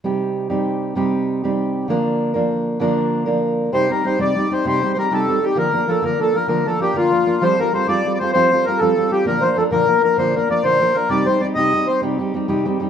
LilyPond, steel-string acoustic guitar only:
\new Staff \with { instrumentName = "Steel-string acoustic guitar" } { \time 12/8 \key c \dorian \tempo 4. = 130 <c g c' ees' g'>4. <c g c' ees' g'>4. <c g c' ees' g'>4. <c g c' ees' g'>4. | <d f bes d' bes'>4. <d f bes d' bes'>4. <d f bes d' bes'>4. <d f bes d' bes'>4. | <c g c' ees' g'>8 <g c' ees' g'>8 <g c' ees' g'>8 <c g c' ees' g'>8 <g c' ees' g'>8 <g c' ees' g'>8 <c g c' ees' g'>8 <g c' ees' g'>8 <g c' ees' g'>8 <c g c' ees' g'>8 <g c' ees' g'>8 <g c' ees' g'>8 | <d f bes d' bes'>8 <f bes d' bes'>8 <f bes d' bes'>8 <d f bes d' bes'>8 <f bes d' bes'>8 <f bes d' bes'>8 <d f bes d' bes'>8 <f bes d' bes'>8 <f bes d' bes'>8 <d f bes d' bes'>8 <f bes d' bes'>8 <f bes d' bes'>8 |
<f g c' f' a'>8 <g c' f' a'>8 <g c' f' a'>8 <f g c' f' a'>8 <g c' f' a'>8 <g c' f' a'>8 <f g c' f' a'>8 <g c' f' a'>8 <g c' f' a'>8 <f g c' f' a'>8 <g c' f' a'>8 <g c' f' a'>8 | <bes, d f bes d' bes'>8 <f bes d' bes'>8 <f bes d' bes'>8 <bes, d f bes d' bes'>8 <f bes d' bes'>8 <f bes d' bes'>8 <bes, d f bes d' bes'>8 <f bes d' bes'>8 <f bes d' bes'>8 <bes, d f bes d' bes'>8 <f bes d' bes'>8 <f bes d' bes'>8 | <c g c' ees' g'>8 <g c' ees' g'>8 <g c' ees' g'>8 <c g c' ees' g'>8 <g ees' g'>8 <g c' ees' g'>8 <c g c' ees' g'>8 <g c' ees' g'>8 <g c' ees' g'>8 <c g c' ees' g'>8 <g c' ees' g'>8 <g c' ees' g'>8 | }